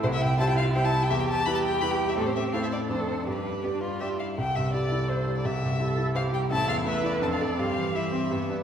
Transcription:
<<
  \new Staff \with { instrumentName = "Violin" } { \time 3/4 \key c \major \tempo 4 = 167 c''16 e''16 g''8 a''16 g''16 f''8 g''16 a''8 g''16 | e''16 g''16 a''8 b''16 a''16 g''8 b''16 g''8 e''16 | a'16 c''16 e''8 f''16 e''16 d''8 c''16 a'16 c''8 | b'2 e''8 f''8 |
g''8 e''8 d''4 c''8. d''16 | e''4. r8 f''8 g''8 | a''8 f''8 e''8 d''8 a''16 f''16 d''8 | f''4 e''4. r8 | }
  \new Staff \with { instrumentName = "Cello" } { \time 3/4 \key c \major e'4 f'4 e'4 | g'4 g'2~ | g'4 a'4 a'4 | g'2~ g'8 r8 |
r4 a'2 | g'4 a'4 g'4 | a'4 b'4 a'4 | g'2~ g'8 r8 | }
  \new Staff \with { instrumentName = "Violin" } { \time 3/4 \key c \major e'2. | g'2. | c'2 d'4~ | d'4 b16 d'16 f'8 g'16 f'16 e'8 |
r4 e'4 e'4 | r4 e'4 e'4 | e'4 e'4 d'4 | c'4 e'8 c'8 b4 | }
  \new Staff \with { instrumentName = "Grand piano" } { \time 3/4 \key c \major c,4 <g e' c''>4 <g e' c''>4 | e,4 <g e' b'>4 <g e' b'>4 | a,4 <a e' c''>4 <f, a d' d''>4 | g,4 <g d' d''>4 <g d' d''>4 |
c,8 g,8 g8 e'8 c''8 g8 | c,8 g,8 g8 e'8 c''8 g8 | a,,8 e,8 a8 e'8 f,8 <d' a'>8 | g,8 e8 g8 c'8 g,8 <d' b'>8 | }
>>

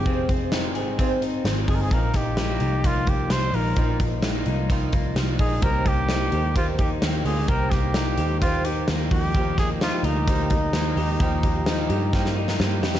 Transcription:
<<
  \new Staff \with { instrumentName = "Trumpet" } { \time 4/4 \key ees \major \tempo 4 = 129 g'8 r2. aes'32 bes'32 aes'16 | bes'8 g'4. f'8 g'8 c''8 bes'8~ | bes'8 r2. aes'8 | bes'8 g'4. f'8 g'8 r8 aes'8 |
bes'8 g'4. f'8 g'8 r8 g'8~ | g'8 aes'8 f'8 ees'2~ ees'8~ | ees'2. r4 | }
  \new Staff \with { instrumentName = "Clean electric guitar" } { \time 4/4 \key ees \major <c' ees' aes'>8 c'8 ees'8 aes'8 c'8 ees'8 c'8 aes'8 | <f ees'>8 f8 aes16 bes16 ees'8 f8 bes8 f8 ees'8 | <f ees'>8 f8 aes16 bes16 ees'8 f8 bes8 f8 ees'8 | <bes g'>8 bes8 ees'8 g'8 bes8 ees'8 bes8 f'16 g'16 |
<bes g'>8 bes8 ees'8 g'8 bes8 ees'8 bes8 f8 | <f g'>8 bes8 ees'8 f'16 g'16 bes8 ees'8 bes8 g'8 | <f g'>8 bes8 ees'8 g'8 bes8 ees'8 bes8 g'8 | }
  \new Staff \with { instrumentName = "Twelve-string acoustic guitar" } { \time 4/4 \key ees \major <f, c ees aes c' f'>8 <ees aes c' f'>8 <ees aes c' f'>8 <ees aes c' f'>8 <f, c ees aes c' f'>8 <ees aes c' f'>8 <ees aes c' f'>8 <ees aes c' f'>8 | <bes, ees bes ees' f'>8 <bes ees' f'>8 <ees bes ees' f'>8 <bes ees' f'>8 <bes, ees bes ees' f'>8 <bes ees' f'>8 <ees bes ees' f'>8 <bes ees' f'>8 | <bes, ees bes ees' f'>8 <bes ees' f'>8 <ees bes ees' f'>8 <bes ees' f'>8 <bes, ees bes ees' f'>8 <bes ees' f'>8 <ees bes ees' f'>8 <bes ees' f'>8 | <c ees bes c' g'>8 <bes c' g'>8 <ees bes c' g'>8 <bes c' g'>8 <c ees bes c' g'>8 <bes c' g'>8 <ees bes c' g'>8 <bes c' g'>8 |
<c ees bes c' g'>8 <bes c'>8 <ees bes c' g'>8 <bes c' g'>8 <c ees bes c' g'>8 <bes c' g'>8 <ees bes c' g'>8 <bes ees' g'>8 | <ees f bes ees' g'>8 <bes ees' g'>8 <f bes ees' g'>8 <bes ees' g'>8 <ees f bes ees' g'>8 <bes ees' g'>8 <f bes ees' g'>8 <bes ees' g'>8 | <ees f bes ees' g'>8 <bes ees' g'>8 <f bes ees' g'>8 <bes ees' g'>8 <ees f bes ees' g'>8 <bes ees' g'>8 <f bes ees' g'>8 <bes ees' g'>8 | }
  \new Staff \with { instrumentName = "Picked electric bass" } { \clef bass \time 4/4 \key ees \major f,,4. aes,,4. aes,,8 g,,8 | bes,,4. c,4. c,8 bes,,8 | bes,,4. c,4. c,8 bes,,8 | c,4. ees,4. ees,8 d,8 |
c,4. ees,4. ees,8 ees,8~ | ees,4. d,4. ees,8 ees,8 | ees,4. g,4. g,8 f,8 | }
  \new DrumStaff \with { instrumentName = "Drums" } \drummode { \time 4/4 <hh bd>8 <hh bd>8 <hh sn>8 hh8 <hh bd>8 hh8 <hh sn>8 <hho bd>8 | <hh bd>8 <hh bd sn>8 <hh sn>8 hh8 <hh bd>8 <hh bd>8 <hh sn>8 hho8 | <hh bd>8 <hh bd>8 <hh sn>8 hh8 <hh bd>8 <hh bd>8 <hh sn>8 <hho bd>8 | <hh bd>8 <hh bd>8 <hh sn>8 hh8 <hh bd>8 <hh bd>8 <hh sn>8 hho8 |
<hh bd>8 <hh bd sn>8 <hh sn>8 hh8 <hh bd>8 hh8 <hh sn>8 <hho bd>8 | <hh bd>8 <hh bd sn>8 <hh sn>8 hh8 <hh bd>8 <hh bd>8 <hh sn>8 hho8 | <hh bd>8 <hh bd>8 <hh sn>8 hh8 <bd sn>16 sn8 sn16 sn8 sn16 sn16 | }
>>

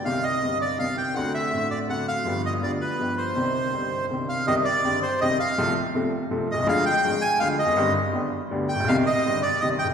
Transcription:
<<
  \new Staff \with { instrumentName = "Bandoneon" } { \time 3/4 \key c \minor \tempo 4 = 163 f''8 ees''4 d''8 f''8 g''8 | fis''8 e''4 d''8 fis''8 f''8~ | f''8 ees''8 d''8 b'4 c''8~ | c''2 r8 f''8 |
ees''8 d''4 c''8 ees''8 f''8~ | f''8 r2 ees''8 | f''8 g''4 aes''8 f''8 ees''8~ | ees''8 r2 g''8 |
f''8 ees''4 d''8 ees''8 g''8 | }
  \new Staff \with { instrumentName = "Upright piano" } { \clef bass \time 3/4 \key c \minor <c, c ees g c' g'>4 <g,, g, ees g c' g'>4 <c, c ees g c' g'>4 | <d, d a c' fis'>4 <a,, a, d a c' fis'>4 <d, d a c' fis'>4 | <g,, g, f b d' g'>4 <d, d f b d' g'>4 <g,, g, f b d' g'>4 | <c, c ees c' d' g'>4 <g,, g, ees c' d' g'>4 <c, c ees c' d' g'>4 |
<c, c ees g c' g'>8 r8 <g,, g, ees g c' g'>8 r8 <c, c ees g c' g'>8 r8 | <c, c f a c' a'>8 r8 <c, c f a c' a'>8 r8 <c, c f a c' a'>8 r32 b,,32 c,32 des,32 | <d, d f aes d' aes'>8 r8 <aes,, aes, f aes d' aes'>8 r8 <d, d f aes d' aes'>8 r32 e,32 f,32 fis,32 | <g,, g, ees g c' g'>8 r8 <g,, g, d g b g'>8 r8 <d, d g b g'>8 r32 a,,32 bes,,32 b,,32 |
<c, c ees g c' g'>8 r8 <g,, g, ees g c' g'>8 r8 <c, c ees g c' g'>8 r32 b,,32 c,32 r32 | }
>>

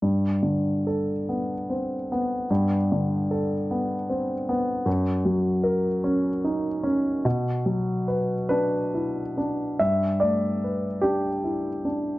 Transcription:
\new Staff \with { instrumentName = "Grand piano" } { \time 6/8 \key g \major \tempo 4. = 49 << { r2. | r2. | r2. | r4. b'4. |
e''8 d''4 g'4. | } \\ { g,8 d8 a'8 b8 c'8 b8 | g,8 d8 a'8 b8 c'8 b8 | fis,8 fis8 ais'8 cis'8 ees'8 cis'8 | b,8 fis8 b'8 d'8 e'8 d'8 |
g,8 a8 b'8 d'8 e'8 d'8 | } >> }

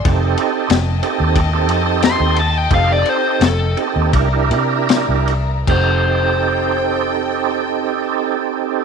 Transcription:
<<
  \new Staff \with { instrumentName = "String section" } { \time 4/4 \key f \mixolydian \tempo 4 = 81 <ees'' g'' a''>1~ | <ees'' g'' a''>2 <d'' e'' bes''>2 | <a' ees'' g''>1 | }
  \new Staff \with { instrumentName = "Overdriven electric guitar" } { \time 4/4 \key f \mixolydian r2. c'''8 a''16 g''16 | f''16 d''16 c''8 a'8 r2 r8 | c''1 | }
  \new Staff \with { instrumentName = "Tonewheel organ" } { \time 4/4 \key f \mixolydian <c' ees' g' a'>4~ <c' ees' g' a'>16 r16 <c' ees' g' a'>8 r16 <c' ees' g' a'>4~ <c' ees' g' a'>16 r8 | <c' ees' g' a'>4~ <c' ees' g' a'>16 r16 <c' ees' g' a'>8 <d' e' g' bes'>16 <d' e' g' bes'>4~ <d' e' g' bes'>16 r8 | <c' ees' g' a'>1 | }
  \new Staff \with { instrumentName = "Fingered electric bass" } { \clef bass \time 4/4 \key f \mixolydian f,,8 r8 f,,8 r16 ees,8. f,8. ees,8. | f,,8 r8 f,,8 r16 ees,16 c,8 c8. c,8. | f,,1 | }
  \new DrumStaff \with { instrumentName = "Drums" } \drummode { \time 4/4 <bd cymr>8 cymr8 <cymr sn>8 cymr8 <bd cymr>8 cymr8 <cymr sn>8 cymr8 | <bd cymr>8 cymr8 <cymr sn>8 cymr8 <bd cymr>8 cymr8 <cymr sn>8 cymr8 | <cymc bd>4 r4 r4 r4 | }
>>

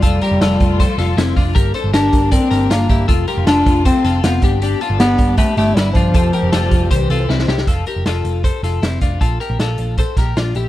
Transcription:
<<
  \new Staff \with { instrumentName = "Clean electric guitar" } { \time 4/4 \key f \major \tempo 4 = 157 <f' a'>8 <g' bes'>8 <f' a'>4 <a' c''>8 <f' a'>8 <c' e'>8 <d' f'>8 | <g' bes'>8 <a' c''>8 <g' bes'>4 <bes' d''>8 <g' bes'>8 <d' f'>8 <e' g'>8 | <f' a'>8 <g' bes'>8 <f' a'>4 <a' c''>8 <f' a'>8 <c' f'>8 <d' g'>8 | <d' g'>8 <f' a'>8 <d' g'>4 <g' b'>8 <e' g'>8 <b e'>8 <d' f'>8 |
<f' a'>8 <g' bes'>8 <f' a'>4 <g' c''>8 <f' a'>8 <c' e'>8 <e' g'>8 | <f' a'>8 <g' bes'>8 <f' a'>4 <a' c''>8 <f' a'>8 <c' e'>8 <d' f'>8 | <f' a'>8 <g' bes'>8 <f' a'>4 <a' c''>8 <g' bes'>8 <d' f'>8 <e' g'>8 | }
  \new Staff \with { instrumentName = "Bass clarinet" } { \time 4/4 \key f \major g2.~ g8 r8 | r4 d'4 c'4 bes4 | r4 d'4 c'4 b4 | r4 b4 a8 a8 g8 f8~ |
f2 e4. r8 | r1 | r1 | }
  \new Staff \with { instrumentName = "String section" } { \time 4/4 \key f \major << { <c g a f'>1 | <bes d'>1 | <c a f'>2.~ <c a f'>8 <b d'>8~ | <b d'>1 |
<f a c' g'>2 <e c'>2 | r1 | r1 | } \\ { f1 | r1 | f2.~ f8 r8 | r1 |
g1 | r1 | r1 | } >> }
  \new Staff \with { instrumentName = "Picked electric bass" } { \clef bass \time 4/4 \key f \major f,,8 r16 f,,16 f,,8 f,,8. r16 f,,8 f,,8 f,,8 | g,,8 r16 g,,16 g,,8 g,,8. r16 g,,8 g,,8 g,,8 | f,,8 r16 f,,16 f,,8 f,,8. r16 f,,8 f,,8 g,,8~ | g,,8 r16 g,,16 g,,8 g,,8. r16 g,,8 g,,8 g,,8 |
f,,8 r16 f,,16 f,,8 f,,8 c,8 c,8 c,8 c,8 | f,,8 r16 f,,16 f,,8 f,,8. r16 f,,8 f,,8 f,,8 | bes,,8 r16 bes,,16 bes,,8 bes,,8. r16 bes,,8 bes,,8 bes,,8 | }
  \new DrumStaff \with { instrumentName = "Drums" } \drummode { \time 4/4 <hh bd>8 hh8 <hh sn>8 <hh bd>8 <hh bd>8 <hh sn>8 <hh sn>8 <hho bd>8 | <hh bd>8 hh8 <hh sn>8 <hh bd>8 <hh bd>8 <hh sn>8 <hh sn>8 <hh bd>8 | <hh bd>8 hh8 <hh sn>8 <hh bd>8 <hh bd>8 <hh sn>8 <hh sn>8 <hh bd>8 | hh8 hh8 <hh sn>8 <hh bd>8 <hh bd>8 hh8 <hh sn>8 <hh bd>8 |
<hh bd>8 hh8 <hh sn>8 <hh bd>8 <hh bd>8 hh8 sn16 sn16 sn16 sn16 | <hh bd>8 hh8 <hh sn>8 hh8 <hh bd>8 <hh sn>8 <hh sn>8 <hh bd>8 | <hh bd>8 hh8 <hh sn>8 hh8 <hh bd>8 <hh bd sn>8 <hh sn>8 hh8 | }
>>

